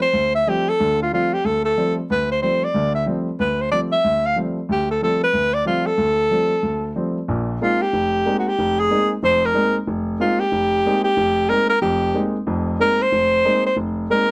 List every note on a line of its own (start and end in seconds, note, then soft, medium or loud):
0.02 0.32 C5 medium
0.13 0.41 D2 medium
0.35 0.51 E5 medium
0.47 0.68 F3 soft
0.47 0.68 G3 soft
0.47 0.68 A3 soft
0.47 0.68 C4 medium
0.47 0.71 G4 medium
0.69 1.00 A4 medium
0.80 1.07 D2 medium
0.80 1.07 D3 medium
1.02 1.12 F4 medium
1.12 1.33 F3 soft
1.12 1.33 G3 soft
1.12 1.33 A3 soft
1.12 1.33 C4 medium
1.12 1.35 F4 medium
1.34 1.47 G4 medium
1.44 1.72 D2 medium
1.44 1.64 A4 medium
1.65 1.95 A4 medium
1.78 1.98 F3 medium
1.78 1.98 G3 soft
1.78 1.98 A3 soft
1.78 1.98 C4 medium
2.10 2.37 D2 medium
2.10 2.29 B4 medium
2.32 2.42 C5 medium
2.42 2.63 F3 soft
2.42 2.63 G3 soft
2.42 2.63 A3 soft
2.42 2.63 C4 soft
2.42 2.66 C5 medium
2.64 2.94 D5 medium
2.74 3.02 D2 medium
2.74 3.02 D3 medium
2.95 3.06 E5 medium
3.06 3.27 F3 medium
3.06 3.27 G3 soft
3.06 3.27 A3 soft
3.06 3.28 C4 medium
3.39 3.67 D2 medium
3.39 3.63 B4 medium
3.61 3.71 C5 medium
3.72 3.93 F3 soft
3.72 3.93 G3 soft
3.72 3.93 A3 soft
3.72 3.93 C4 medium
3.72 3.80 D5 medium
3.92 4.28 E5 loud
4.04 4.32 D2 medium
4.26 4.37 F5 medium
4.36 4.57 F3 soft
4.36 4.57 G3 soft
4.36 4.58 A3 soft
4.36 4.58 C4 medium
4.69 4.97 D2 medium
4.69 4.89 G4 medium
4.91 5.01 A4 medium
5.02 5.23 F3 soft
5.02 5.23 G3 soft
5.02 5.23 A3 soft
5.02 5.23 C4 medium
5.02 5.21 A4 medium
5.24 5.55 B4 medium
5.33 5.61 D2 medium
5.54 5.66 D5 loud
5.65 5.87 F3 medium
5.65 5.87 G3 soft
5.65 5.87 A3 soft
5.65 5.87 C4 medium
5.65 5.88 F4 medium
5.86 6.96 A4 medium
5.97 6.26 D2 medium
6.31 6.52 F3 soft
6.31 6.52 G3 soft
6.31 6.52 A3 soft
6.31 6.52 C4 medium
6.63 6.91 D2 medium
6.96 7.17 F3 medium
6.96 7.17 G3 soft
6.96 7.17 A3 soft
6.96 7.17 C4 medium
7.28 7.56 A#1 medium
7.28 7.56 A#2 medium
7.61 7.82 G#3 medium
7.61 7.82 A#3 soft
7.61 7.82 C4 soft
7.61 7.82 D#4 medium
7.61 7.83 F4 medium
7.82 8.37 G4 medium
7.93 8.21 F1 medium
8.26 8.47 G#3 medium
8.26 8.47 A#3 medium
8.26 8.47 C4 soft
8.26 8.47 D#4 medium
8.39 8.50 F#4 medium
8.48 8.81 G4 medium
8.59 8.86 F1 medium
8.80 9.11 G#4 loud
8.91 9.11 G#3 medium
8.91 9.11 A#3 soft
8.91 9.12 C4 soft
8.91 9.12 D#4 medium
9.23 9.50 F1 medium
9.23 9.50 F2 medium
9.23 9.47 C5 loud
9.46 9.76 A#4 medium
9.54 9.75 G#3 medium
9.54 9.76 A#3 medium
9.54 9.76 C4 soft
9.54 9.76 D#4 medium
9.87 10.15 F1 medium
10.20 10.41 G#3 medium
10.20 10.41 A#3 soft
10.20 10.41 C4 medium
10.20 10.41 D#4 medium
10.20 10.41 F4 medium
10.40 11.03 G4 loud
10.52 10.80 F1 medium
10.86 11.06 G#3 medium
10.86 11.06 A#3 soft
10.86 11.07 C4 medium
10.86 11.06 D#4 medium
11.04 11.51 G4 loud
11.17 11.45 F1 medium
11.49 11.70 G#3 medium
11.49 11.70 A#3 soft
11.49 11.70 C4 soft
11.49 11.70 D#4 medium
11.49 11.69 A#4 loud
11.70 11.81 A#4 loud
11.82 12.10 F1 medium
11.82 12.10 F2 medium
11.82 12.30 G4 medium
12.14 12.35 G#3 medium
12.14 12.35 A#3 soft
12.14 12.36 C4 soft
12.14 12.36 D#4 medium
12.47 12.75 F1 medium
12.47 12.74 F2 medium
12.79 13.00 G#3 soft
12.79 13.01 A#3 soft
12.79 13.01 C4 soft
12.79 13.01 D#4 medium
12.79 13.04 A#4 loud
13.02 13.66 C5 loud
13.12 13.40 F1 medium
13.45 13.66 G#3 medium
13.45 13.66 A#3 medium
13.45 13.66 C4 soft
13.45 13.66 D#4 medium
13.66 13.77 C5 medium
13.77 14.05 F1 medium
14.10 14.31 G#3 medium
14.10 14.31 A#3 medium
14.10 14.31 C4 soft
14.10 14.31 D#4 medium
14.10 14.31 A#4 loud